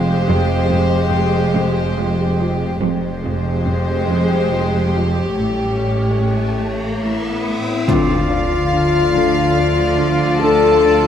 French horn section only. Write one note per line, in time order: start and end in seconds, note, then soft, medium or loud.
0.00 2.78 G#3 medium
0.00 2.77 G4 medium
2.81 5.18 G#3 medium
2.81 7.00 G4 medium
5.35 7.00 C#4 medium
7.04 7.85 E4 medium
7.88 10.42 F4 medium
10.40 11.07 A4 medium